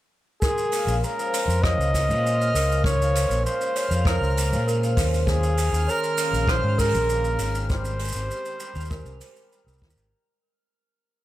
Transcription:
0.42 G#3 G#4 A#4 F6, kick, shaker
0.58 shaker
0.72 A#2, open hi-hat, shaker
0.87 A#1 C#3, shaker
1.04 A#4, shaker
1.18 F3, shaker
1.33 G#3, open hi-hat, shaker
1.48 F2, shaker
1.63 A#2 C#5 D#5, kick, cross-stick, shaker
1.78 C#2 C#3, shaker
1.94 kick, open hi-hat, shaker
2.08 A#2 F3, shaker
2.23 G#3, shaker
2.41 shaker
2.54 C#2 A#2 A#4, open hi-hat, shaker
2.69 C#3, shaker
2.84 C#5, kick, shaker
2.99 F3, shaker
3.14 G#3, open hi-hat, shaker
3.30 A#1, shaker
3.45 A#2 C5, shaker
3.60 C#3, shaker
3.75 C#5, open hi-hat, shaker
3.90 F2 F3, shaker
4.05 G#3 A#4, kick, cross-stick, shaker
4.21 C#2, shaker
4.36 A#2, open hi-hat, shaker
4.51 A#2 C#3, shaker
4.68 A#4, shaker
4.81 F3, shaker
4.96 D#2 G#3, kick, open hi-hat, shaker
5.14 shaker
5.26 A#2 D#3 C#4 G#4, kick, shaker
5.42 C#3, shaker
5.57 open hi-hat, shaker
5.72 D#2 D#3, shaker
5.87 G#3 A#4 C#5, shaker
6.04 shaker
6.17 A#2, open hi-hat, shaker
6.33 A#1 C#3, shaker
6.48 C5, kick, cross-stick, shaker
6.63 G#2 D#3
6.78 G#3 A#4, kick, open hi-hat, shaker
6.79 A#4, open hi-hat
6.82 open hi-hat
6.85 open hi-hat
6.88 open hi-hat
6.90 A#1, open hi-hat, shaker
7.08 A#2, shaker
7.23 C#3, shaker
7.38 G#1, open hi-hat, shaker
7.54 D#3, shaker
7.68 G3 G4 C5, kick, shaker
7.85 shaker
7.99 G#3 C5, open hi-hat, shaker
8.05 shaker
8.08 shaker
8.12 G#1 C3, shaker
8.16 shaker
8.31 shaker
8.44 D#3, shaker
8.60 G3, shaker
8.75 D#2, shaker
8.80 shaker
8.85 shaker
8.90 G#3 A#4, kick, shaker
8.95 shaker
9.00 shaker
9.05 C2 C3, shaker
9.20 G3, open hi-hat, shaker
9.36 D#3, shaker
9.51 G3, shaker
9.67 C2, shaker
9.73 shaker
9.78 D#2 G3, kick, shaker
9.83 shaker
9.88 shaker
9.90 shaker
9.93 D#3, shaker
9.97 G#1, shaker

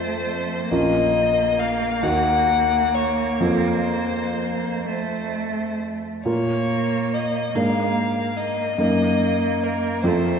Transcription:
Already playing: F2 A3 C4 F4 A4 C5
0.71 A#1 A#3 C#4 F4 A#4 D#5
1.59 F5
2.02 D#2 D#4 F#4 A#4 F#5
2.95 C#5
3.40 F2 C4 F4 A4 C5
4.86 A3
6.25 A#2 A#3 F4 A#4 C#5
7.14 D#5
7.55 G#2 A#3 D4 A#4 F5
8.37 D#5
8.78 F#2 A#3 D#4 A#4
9.64 A#4
10.04 F2 A3 C4 F4 A4 C5

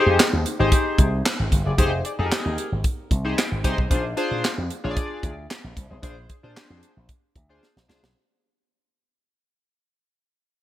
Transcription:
Already playing: D#4 G4 G#4 C5
0.06 F2
0.20 snare, clap, closed hi-hat
0.33 D#2
0.46 closed hi-hat
0.59 G#1 D#4 G4 G#4 C5
0.72 kick, closed hi-hat
0.98 C2, kick, closed hi-hat
1.26 snare, clap, closed hi-hat
1.40 G#1
1.52 G1, kick, closed hi-hat
1.66 F#1 G#4 D5
1.78 F1 D#4 G4 G#4 C5, kick, closed hi-hat
2.05 G#4 D5, closed hi-hat
2.19 F2 D#4 G4 G#4 A4
2.26 A#4
2.32 snare, clap, closed hi-hat
2.46 D#2
2.58 closed hi-hat
2.72 G#1
2.84 kick, closed hi-hat
3.11 C2, kick, closed hi-hat
3.25 D#4 G4 G#4 C5
3.38 snare, clap, closed hi-hat
3.52 G#1
3.64 C2 D#4 G4 G#4 C5, kick, closed hi-hat
3.78 B1, kick
3.90 A#1 D4 F4 G#4 C5, kick, closed hi-hat
4.17 D4 F4 G#4 C5, closed hi-hat
4.31 A#2
4.44 snare, clap, closed hi-hat
4.58 F2
4.70 closed hi-hat
4.84 A#1 D4 F4 G#4 C#5
4.91 D5
4.97 kick, closed hi-hat
5.23 D2, kick, closed hi-hat
5.50 snare, clap, closed hi-hat
5.64 A#1
5.77 C2, kick, closed hi-hat
5.90 B1 G#4 C5
6.02 A#1 D4 F4 G#4 C5, kick, closed hi-hat
6.29 G#4 C5, kick, closed hi-hat
6.43 A#2 D4 F4 G#4 C5
6.57 snare, clap, closed hi-hat
6.70 F2
6.83 closed hi-hat
6.97 A#1
7.09 kick, closed hi-hat
7.35 D2, kick, closed hi-hat
7.49 D4 F4 G#4 C5
7.63 snare
7.76 A#1, snare
7.88 C2 D4 F4 G#4 C5, snare
8.03 B1, snare

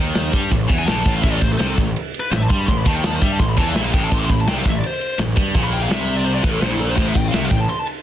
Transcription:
Already playing: D#2 D#3
0.15 snare, ride
0.32 G2 G3, kick, ride
0.50 A1 A2, kick, ride
0.68 E2 E3, kick, ride
0.79 G#5
0.86 A#1 A#2 A5, snare, ride
1.05 A1 A2, kick, ride
1.15 F5
1.22 A1 A2 E5, kick, crash
1.32 D5
1.41 A1 A2 C5, kick, ride
1.53 A4
1.58 C2 C3 C5, snare, ride
1.68 A4
1.78 A1 A2, kick, ride
1.96 ride
2.14 ride
2.20 B4
2.31 A1 A2 C5, snare, ride
2.36 E5
2.42 A5
2.48 G2 G3 C6, kick, ride
2.59 B5
2.66 A1 A2 C6, kick, ride
2.77 B5
2.85 D#2 D#3 A5, kick, ride
2.96 G5
3.04 A5, snare, ride
3.16 C5
3.21 G2 G3 E5, kick, ride
3.32 A5
3.39 A1 A2 C6, kick, ride
3.49 B5
3.57 E2 E3 A5, kick, ride
3.69 F5
3.75 A#1 A#2 E5, snare, ride
3.85 F5
3.93 A1 A2 G5, kick, ride
4.04 A5
4.11 A1 A2 C6, kick, ride
4.19 D6
4.25 C6
4.29 A1 A2 B5, kick, ride
4.41 A5
4.47 C2 C3 G5, snare, ride
4.58 F5
4.65 A1 A2 E5, kick, ride
4.78 D5
4.83 C5, ride
5.01 ride
5.19 A1 A2, snare, ride
5.36 G2 G3, kick, ride
5.54 A#1 A#2, kick, ride
5.64 B5
5.72 G5, ride
5.83 F5
5.89 C2 C3 E5, snare, ride
6.08 ride
6.16 D5
6.25 C5, ride
6.34 D5
6.44 A1 A2 B4, kick, ride
6.52 A4
6.61 A#1 A#2 C5, snare, ride
6.71 E4
6.79 A4, ride
6.90 C5
6.96 A1 A2 C5, kick, crash
7.08 E5
7.15 A1 A2 G5, kick, ride
7.28 F5
7.32 C2 C3 E5, snare, ride
7.44 F5
7.50 A1 A2 G5, kick, ride
7.61 A5
7.69 C6, ride
7.79 A5
7.87 ride

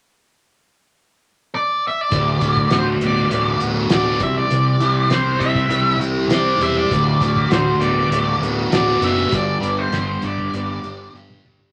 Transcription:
1.55 D5
1.88 E5
2.01 D5
2.11 D1 D2 F#3 A3 D4 F#4, kick, closed hi-hat
2.40 D1 A3, kick, closed hi-hat
2.57 kick
2.70 D1 F#4, snare, closed hi-hat
2.79 C5
3.01 D1 B3, closed hi-hat
3.06 D5
3.31 D1 A3, closed hi-hat
3.60 D1 B3, closed hi-hat
3.90 D1 F#4 D5, snare, closed hi-hat
4.20 C2 C3 E3 G3 C4 E4 G4 E5, kick, closed hi-hat
4.38 D5
4.50 C2 C3, closed hi-hat
4.80 C2 E4, closed hi-hat
5.10 C2 C5, snare, closed hi-hat
5.39 C2 G4 E5, kick, closed hi-hat
5.55 kick
5.69 C2 E4, closed hi-hat
5.98 C2 G4, closed hi-hat
6.28 C2 C5, snare, closed hi-hat
6.34 D5
6.58 E1 G4, closed hi-hat
6.63 E5
6.78 D5
6.89 D1 D2 F#3 A3 D4 F#4, kick, closed hi-hat
7.20 D1 A3, kick, closed hi-hat
7.36 kick
7.49 D1 F#4 C5, snare, closed hi-hat
7.79 D1 B3 D5, closed hi-hat
8.09 D1 A3, closed hi-hat
8.39 D1 B3, closed hi-hat
8.70 D1 F#4 D5, snare, closed hi-hat
9.00 F#1 B3 E5, closed hi-hat
9.31 G1 G2 G3 G4, kick, closed hi-hat
9.35 D5
9.61 G1 B3, closed hi-hat
9.79 C5
9.92 G1 G4, snare, closed hi-hat
10.22 G1 D4 D5, kick, closed hi-hat
10.38 kick
10.53 G1 B3, closed hi-hat
10.83 G1 D4, closed hi-hat
11.13 G1 G4, snare
11.29 high tom
11.44 G1 D4, mid tom
11.59 floor tom

